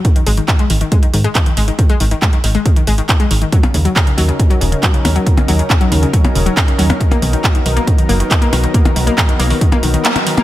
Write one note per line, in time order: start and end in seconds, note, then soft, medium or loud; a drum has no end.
0.05 0.08 D#3 medium
0.05 kick loud
0.05 closed hi-hat medium
0.16 0.23 D#3 medium
0.16 closed hi-hat soft
0.27 0.40 G#1 loud
0.27 0.31 G#3 loud
0.27 open hi-hat loud
0.37 0.40 D#3 medium
0.37 closed hi-hat soft
0.48 0.56 D#3 medium
0.48 kick loud
0.48 clap loud
0.48 closed hi-hat soft
0.59 0.64 G#3 loud
0.59 closed hi-hat soft
0.70 0.84 G#1 medium
0.70 0.73 D#3 medium
0.70 open hi-hat loud
0.81 0.88 D#3 medium
0.81 closed hi-hat soft
0.92 0.97 G#3 loud
0.92 kick loud
0.92 closed hi-hat medium
1.03 1.06 D#3 medium
1.03 closed hi-hat soft
1.13 1.27 G#2 medium
1.13 1.21 D#3 medium
1.13 open hi-hat loud
1.24 1.29 G#3 loud
1.24 closed hi-hat soft
1.35 1.38 D#3 medium
1.35 kick loud
1.35 clap loud
1.35 closed hi-hat medium
1.46 1.53 D#3 medium
1.46 closed hi-hat soft
1.57 1.70 G#1 medium
1.57 1.62 G#3 medium
1.57 open hi-hat loud
1.68 1.71 D#3 medium
1.68 closed hi-hat soft
1.79 1.86 D#3 medium
1.79 kick loud
1.79 closed hi-hat medium
1.90 1.95 G#3 loud
1.90 closed hi-hat soft
2.00 2.14 G#1 loud
2.00 2.03 D#3 medium
2.00 open hi-hat loud
2.11 2.19 D#3 medium
2.11 closed hi-hat soft
2.22 2.27 G#3 loud
2.22 kick loud
2.22 clap loud
2.22 closed hi-hat soft
2.33 2.36 D#3 medium
2.33 closed hi-hat soft
2.44 2.57 G#1 loud
2.44 2.51 D#3 medium
2.44 open hi-hat loud
2.55 2.60 G#3 loud
2.55 closed hi-hat soft
2.66 2.69 D#3 medium
2.66 kick loud
2.66 closed hi-hat medium
2.76 2.84 D#3 medium
2.76 closed hi-hat soft
2.87 3.01 G#1 medium
2.87 2.92 G#3 loud
2.87 open hi-hat loud
2.98 3.01 D#3 medium
2.98 closed hi-hat soft
3.09 3.16 D#3 medium
3.09 kick loud
3.09 clap loud
3.09 closed hi-hat medium
3.20 3.25 G#3 loud
3.20 closed hi-hat soft
3.31 3.44 G#1 medium
3.31 3.34 D#3 medium
3.31 open hi-hat loud
3.42 3.49 D#3 medium
3.42 closed hi-hat soft
3.52 3.58 F#3 medium
3.52 kick loud
3.52 closed hi-hat medium
3.63 3.66 C#3 medium
3.63 closed hi-hat soft
3.63 percussion blips medium
3.74 3.88 D#2 loud
3.74 3.82 C#3 medium
3.74 open hi-hat loud
3.85 3.90 F#3 loud
3.85 closed hi-hat soft
3.96 3.99 C#3 medium
3.96 kick loud
3.96 clap loud
3.96 closed hi-hat soft
4.07 4.14 C#3 medium
4.07 closed hi-hat soft
4.18 4.31 D#2 loud
4.18 4.23 F#3 loud
4.18 open hi-hat loud
4.28 4.32 C#3 medium
4.28 closed hi-hat soft
4.39 4.47 C#3 medium
4.39 kick loud
4.39 closed hi-hat medium
4.50 4.55 F#3 loud
4.50 closed hi-hat soft
4.61 4.75 D#1 medium
4.61 4.64 C#3 medium
4.61 open hi-hat loud
4.72 4.79 C#3 medium
4.72 closed hi-hat soft
4.83 4.88 F#3 loud
4.83 kick loud
4.83 clap loud
4.83 closed hi-hat medium
4.94 4.97 C#3 medium
4.94 closed hi-hat soft
5.05 5.18 D#2 medium
5.05 5.12 C#3 medium
5.05 open hi-hat loud
5.05 percussion blips medium
5.15 5.20 F#3 loud
5.15 closed hi-hat soft
5.26 5.29 C#3 medium
5.26 kick loud
5.26 closed hi-hat medium
5.37 5.45 C#3 medium
5.37 closed hi-hat soft
5.37 percussion blips medium
5.48 5.62 D#2 loud
5.48 5.53 F#3 loud
5.48 open hi-hat loud
5.59 5.62 C#3 medium
5.59 closed hi-hat medium
5.70 5.77 C#3 medium
5.70 kick loud
5.70 clap loud
5.70 closed hi-hat soft
5.81 5.86 F#3 loud
5.81 closed hi-hat soft
5.92 6.05 D#2 medium
5.92 5.95 C#3 medium
5.92 open hi-hat medium
6.02 6.10 C#3 medium
6.02 closed hi-hat soft
6.13 6.18 F#3 loud
6.13 kick loud
6.13 closed hi-hat medium
6.24 6.27 C#3 medium
6.24 closed hi-hat soft
6.24 percussion blips medium
6.35 6.49 D#1 medium
6.35 6.43 C#3 medium
6.35 open hi-hat loud
6.46 6.51 F#3 loud
6.46 closed hi-hat medium
6.57 6.60 C#3 medium
6.57 kick loud
6.57 clap loud
6.57 closed hi-hat medium
6.68 6.75 C#3 medium
6.68 closed hi-hat soft
6.79 6.92 D#2 medium
6.79 6.84 F#3 loud
6.79 open hi-hat loud
6.89 6.93 C#3 medium
6.89 closed hi-hat soft
6.89 percussion blips medium
7.00 7.08 D#3 medium
7.00 kick loud
7.00 closed hi-hat medium
7.11 7.16 A#3 loud
7.11 closed hi-hat soft
7.11 percussion blips medium
7.22 7.36 B1 loud
7.22 7.25 D#3 medium
7.22 open hi-hat loud
7.33 7.40 D#3 medium
7.33 closed hi-hat medium
7.44 7.49 A#3 loud
7.44 kick loud
7.44 clap loud
7.44 closed hi-hat soft
7.55 7.58 D#3 medium
7.55 closed hi-hat medium
7.66 7.79 B1 loud
7.66 7.73 D#3 medium
7.66 open hi-hat loud
7.76 7.81 A#3 loud
7.76 closed hi-hat medium
7.87 7.90 D#3 medium
7.87 kick loud
7.87 closed hi-hat medium
7.98 8.06 D#3 medium
7.98 closed hi-hat medium
8.09 8.23 F#1 medium
8.09 8.14 A#3 loud
8.09 open hi-hat medium
8.20 8.23 D#3 medium
8.20 closed hi-hat medium
8.31 8.38 D#3 medium
8.31 kick loud
8.31 clap loud
8.31 closed hi-hat medium
8.42 8.47 A#3 loud
8.42 closed hi-hat medium
8.52 8.66 B1 medium
8.52 8.56 D#3 medium
8.52 open hi-hat loud
8.52 percussion blips medium
8.63 8.71 D#3 medium
8.63 closed hi-hat medium
8.74 8.79 A#3 loud
8.74 kick loud
8.74 closed hi-hat medium
8.85 8.88 D#3 medium
8.85 closed hi-hat medium
8.85 percussion blips medium
8.96 9.10 B1 loud
8.96 9.03 D#3 medium
8.96 open hi-hat loud
9.07 9.12 A#3 loud
9.07 closed hi-hat medium
9.18 9.21 D#3 medium
9.18 kick loud
9.18 clap loud
9.18 closed hi-hat soft
9.29 9.36 D#3 medium
9.29 closed hi-hat medium
9.39 9.53 B1 loud
9.39 9.44 A#3 loud
9.39 open hi-hat loud
9.50 9.53 D#3 medium
9.50 open hi-hat medium
9.61 9.69 D#3 medium
9.61 kick loud
9.61 closed hi-hat medium
9.72 9.77 A#3 loud
9.72 closed hi-hat medium
9.72 percussion blips medium
9.83 9.97 B1 medium
9.83 9.86 D#3 medium
9.83 open hi-hat loud
9.94 10.01 D#3 medium
9.94 closed hi-hat medium
10.05 10.10 A#3 loud
10.05 clap loud
10.05 closed hi-hat medium
10.16 10.19 D#3 medium
10.16 closed hi-hat medium
10.16 percussion blips medium
10.26 10.34 D#3 medium
10.26 open hi-hat loud
10.37 10.42 A#3 loud
10.37 closed hi-hat medium
10.37 percussion blips medium